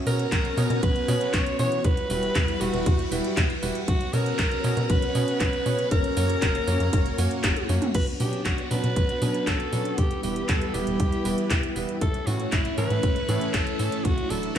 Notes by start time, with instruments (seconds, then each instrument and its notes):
Already playing: string machine B3 C#4 F#4 C#5
0.07 analog synth bass B2, electric grand piano B2 B3 C#4 F#4 C#5, alto saxophone A#4, open hi-hat
0.19 closed hi-hat
0.32 analog synth bass B1, kick, clap, closed hi-hat
0.45 closed hi-hat
0.57 analog synth bass B2, electric grand piano B2 B3 C#4 F#4 C#5, open hi-hat
0.70 analog synth bass B2, closed hi-hat
0.83 analog synth bass B1, alto saxophone B4, kick, closed hi-hat
0.96 closed hi-hat
1.08 electric grand piano B2 B3 C#4 F#4 C#5, analog synth bass B2, open hi-hat
1.21 closed hi-hat
1.34 analog synth bass B1, alto saxophone C#5, kick, clap, closed hi-hat
1.46 closed hi-hat
1.59 analog synth bass B2, electric grand piano E3 B3 C#4 F#4 C#5, alto saxophone C#5, open hi-hat
1.72 closed hi-hat
1.84 analog synth bass E2, string machine G3 E4 B4, alto saxophone B4, kick, closed hi-hat
1.97 closed hi-hat
2.10 analog synth bass E1, electric grand piano G3 E4 F#4 B4, open hi-hat
2.23 closed hi-hat
2.35 analog synth bass E2, kick, clap, closed hi-hat
2.48 closed hi-hat
2.61 analog synth bass E1, electric grand piano G3 E4 F#4 B4, alto saxophone F#4, open hi-hat
2.74 analog synth bass E1, closed hi-hat
2.86 analog synth bass E2, kick, closed hi-hat
2.99 closed hi-hat
3.12 analog synth bass E1, electric grand piano G3 E4 F#4 B4, open hi-hat
3.24 closed hi-hat
3.37 analog synth bass E2, kick, clap, closed hi-hat
3.50 closed hi-hat
3.63 analog synth bass E1, electric grand piano G3 E4 F#4 B4, open hi-hat
3.75 closed hi-hat
3.88 analog synth bass B1, string machine B3 C#4 C#5, alto saxophone F#4, kick, closed hi-hat
4.01 closed hi-hat
4.13 analog synth bass B2, electric grand piano B2 B3 C#4 F#4 C#5, alto saxophone A#4, open hi-hat
4.26 closed hi-hat
4.39 analog synth bass B1, kick, clap, closed hi-hat
4.51 closed hi-hat
4.64 analog synth bass B2, electric grand piano B2 B3 C#4 F#4 C#5, open hi-hat
4.77 analog synth bass B2, closed hi-hat
4.90 analog synth bass B1, alto saxophone B4, kick, closed hi-hat
5.02 closed hi-hat
5.15 analog synth bass B2, electric grand piano B2 B3 C#4 F#4 C#5, open hi-hat
5.28 closed hi-hat
5.40 analog synth bass B1, alto saxophone B4, kick, clap, closed hi-hat
5.53 closed hi-hat
5.66 analog synth bass B2, electric grand piano B3 C#4 F#4 C#5, open hi-hat
5.79 closed hi-hat
5.91 analog synth bass F#1, string machine A#3, alto saxophone A#4, kick, closed hi-hat
6.04 closed hi-hat
6.17 analog synth bass F#2, electric grand piano A#3 C#4 F#4 C#5, open hi-hat
6.30 closed hi-hat
6.42 analog synth bass F#1, kick, clap, closed hi-hat
6.55 closed hi-hat
6.67 analog synth bass F#2, electric grand piano A#3 C#4 F#4 C#5, open hi-hat
6.80 analog synth bass F#2, closed hi-hat
6.93 analog synth bass F#1, kick, closed hi-hat
7.06 closed hi-hat
7.18 analog synth bass F#2, electric grand piano A#3 C#4 F#4 C#5, open hi-hat
7.31 closed hi-hat
7.44 analog synth bass F#1, kick, clap, closed hi-hat, high tom
7.56 closed hi-hat, high tom
7.69 analog synth bass F#2, electric grand piano A#3 C#4 F#4 C#5, open hi-hat
7.82 closed hi-hat, mid tom
7.95 analog synth bass B1, string machine B3 D4 F#4 C#5, alto saxophone B4, kick, closed hi-hat, crash
8.07 closed hi-hat
8.20 electric grand piano B2 F#3 C#4 D4 B4, analog synth bass B2, alto saxophone G4, open hi-hat
8.33 closed hi-hat
8.45 analog synth bass B1, alto saxophone F#4, kick, clap, closed hi-hat
8.58 closed hi-hat
8.71 electric grand piano B2 F#3 C#4 D4 B4, analog synth bass B2, alto saxophone B4, open hi-hat
8.84 analog synth bass B2, closed hi-hat
8.96 analog synth bass B1, kick, closed hi-hat
9.09 closed hi-hat
9.22 analog synth bass B2, electric grand piano B2 F#3 C#4 D4 B4, open hi-hat
9.34 closed hi-hat
9.47 analog synth bass B1, alto saxophone A4, kick, clap, closed hi-hat
9.60 closed hi-hat
9.72 analog synth bass B2, electric grand piano F#3 C#4 D4 B4, open hi-hat
9.85 closed hi-hat
9.98 analog synth bass E2, string machine G3 E4 B4, alto saxophone G4, kick, closed hi-hat
10.11 closed hi-hat
10.23 analog synth bass E1, electric grand piano G3 B3 E4 B4, alto saxophone G4, open hi-hat
10.36 closed hi-hat
10.49 analog synth bass E2, alto saxophone A4, kick, clap, closed hi-hat
10.62 closed hi-hat
10.74 analog synth bass E1, electric grand piano G3 B3 E4 B4, alto saxophone G4, open hi-hat
10.87 analog synth bass E1, closed hi-hat
11.00 analog synth bass E2, kick, closed hi-hat
11.12 closed hi-hat
11.25 analog synth bass E1, electric grand piano G3 B3 E4 B4, open hi-hat
11.38 closed hi-hat
11.51 analog synth bass E2, kick, clap, closed hi-hat
11.63 closed hi-hat
11.76 analog synth bass E1, electric grand piano G3 B3 E4 B4, open hi-hat
11.89 closed hi-hat
12.01 analog synth bass A1, string machine A3 C#4 E4 C#5, alto saxophone A4, kick, closed hi-hat
12.14 closed hi-hat
12.27 analog synth bass A2, electric grand piano A2 E3 A3 C#4 A4, alto saxophone F#4, open hi-hat
12.40 closed hi-hat
12.52 analog synth bass A1, alto saxophone E4, kick, clap, closed hi-hat
12.65 closed hi-hat
12.78 electric grand piano A2 E3 A3 C#4 A4, analog synth bass A2, alto saxophone B4, open hi-hat
12.90 analog synth bass A2, closed hi-hat
13.03 analog synth bass A1, kick, closed hi-hat
13.16 closed hi-hat
13.29 analog synth bass A2, electric grand piano A2 E3 A3 C#4 A4, open hi-hat
13.41 closed hi-hat
13.54 analog synth bass A1, alto saxophone A4, kick, clap, closed hi-hat
13.67 closed hi-hat
13.79 analog synth bass A2, electric grand piano E3 A3 C#4 A4, open hi-hat
13.92 closed hi-hat
14.05 analog synth bass D2, string machine F#4 D5, alto saxophone F#4, kick, closed hi-hat
14.18 closed hi-hat
14.30 analog synth bass D1, electric grand piano F#3 D4 E4 A4, alto saxophone A4, open hi-hat
14.43 closed hi-hat